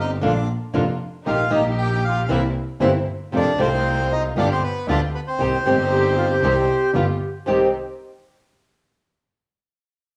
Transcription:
Already playing: G1 C4 D#4 G4
0.00 D#4 D#5
0.21 A#1 D3 A#3 D4 F4
0.26 D4 D5
0.74 F1 D3 A#3 D4 F4
1.25 A#1 D#3 A#3 D#4 F4 G4 F5
1.50 A#1 D#3 A#3 D#4 G4 D#5
1.55 D#4
1.78 G4 G5
2.04 F4 F5
2.25 C2 C3 E3 A#3 F5
2.30 C4 E4 E5
2.81 G1 C3 E3 A#3 C4 E4
3.32 F2 C3 D#3 A3 C4 D#4 F4
3.36 D4 D5
3.58 C2 C3 D#3 A3 C4 D#4 F4 C5
4.12 D#4 D#5
4.36 G1 G3 B3 D4 F4 G4 D5
4.52 C4 C5
4.63 B3 B4
4.88 D2 G3 B3 D4 F4 G4 D5
5.15 B3 B4
5.28 C4 C5
5.38 C2 C3 D#3 G3 C4 D#4 G4
5.65 G1 C3 D#3 G3 C4 D#4 G4
5.91 G4
6.17 F4
6.29 G4
6.42 C2 C3 D#3 G3 C4 D#4 G4
6.94 G1 G3 B3 F4 G4
7.46 C2 C3 D#3 G3 C4 D#4 G4

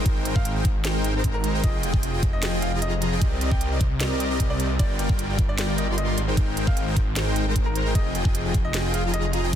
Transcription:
Already playing: G#1
0.06 G#3 D#4 A#4, kick, closed hi-hat
0.25 G#3 D#4 A#4 C5 G5, closed hi-hat
0.36 F5, kick
0.45 closed hi-hat
0.55 G#3 D#4 A#4 C5 G5
0.65 kick, closed hi-hat
0.85 G#3 D#4 A#4 C5 G5, snare, closed hi-hat
1.04 closed hi-hat
1.15 G#3 D#4 A#4 C5 A#5
1.24 kick, closed hi-hat
1.34 A#4
1.44 closed hi-hat
1.54 G#3 D#4 A#4 C5 G5
1.64 F1 F3 F4 G#4 D#5, kick, closed hi-hat
1.83 F3 F4 G#4 D#5 G5, closed hi-hat
1.94 kick
2.03 closed hi-hat
2.13 F3 F4 G#4 D#5 G5
2.23 kick, closed hi-hat
2.33 D#5
2.43 F3 F4 G#4 D#5 G5, snare, closed hi-hat
2.62 F5, closed hi-hat
2.73 F3 F4 G#4 D#5 A#5
2.82 D#5, closed hi-hat
3.02 closed hi-hat
3.12 F3 F4 G#4 D#5 G5
3.21 C2 C4 G4 A#4 D5 D#5, kick, closed hi-hat
3.41 C4 G4 A#4 D5 D#5, closed hi-hat
3.51 G5, kick
3.61 closed hi-hat
3.71 C4 G4 A#4 D5 D#5
3.81 kick, closed hi-hat
4.00 C4 G4 A#4 D5 D#5, snare, closed hi-hat
4.20 closed hi-hat
4.30 C4 G4 A#4 D5 D#5
4.40 kick, closed hi-hat
4.50 C4 G4 A#4 D5 D#5
4.60 closed hi-hat
4.79 G1 G3 F4 A#4 D5 G5, kick, closed hi-hat
4.99 G3 F4 A#4 D5 G5, closed hi-hat
5.09 kick
5.19 closed hi-hat
5.29 G3 F4 A#4 D5 G5
5.39 kick, closed hi-hat
5.49 D5
5.58 G3 F4 A#4 D5 G5, snare, closed hi-hat
5.78 D#5, closed hi-hat
5.88 G3 F4 A#4 D5 C6
5.98 D#5, closed hi-hat
6.18 G#1, closed hi-hat
6.28 G#3 D#4 A#4 C5 G5
6.37 G#3 D#4 C5 G5, kick, closed hi-hat
6.57 G#3 D#4 A#4 C5 G5, closed hi-hat
6.67 F5, kick
6.77 closed hi-hat
6.87 G#3 D#4 A#4 C5 G5
6.96 kick, closed hi-hat
7.16 G#3 D#4 A#4 C5 G5, snare, closed hi-hat
7.36 closed hi-hat
7.46 G#3 D#4 A#4 C5 A#5
7.56 kick, closed hi-hat
7.66 A#4
7.76 closed hi-hat
7.86 G#3 D#4 A#4 C5 G5
7.95 F1 F3 F4 D#5, kick, closed hi-hat
8.15 F3 F4 G#4 D#5 G5, closed hi-hat
8.25 kick
8.35 closed hi-hat
8.45 F3 F4 G#4 D#5 G5
8.54 kick, closed hi-hat
8.65 D#5
8.74 F3 F4 G#4 D#5 G5, snare, closed hi-hat
8.94 F5, closed hi-hat
9.04 F3 F4 G#4 D#5 A#5
9.14 D#5, closed hi-hat
9.33 closed hi-hat
9.44 F3 F4 G#4 D#5 G5

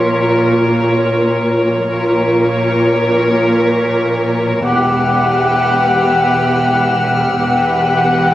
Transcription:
Already playing: A#1 A#2 F4 A#4 C#5 C6
1.91 A#1 A#2 F4 A#4 C#5
4.64 E1 E2 G4 B4 F#5 D6 E6 F6
7.39 E1 E2 G4 B4 F#5
7.98 F#6

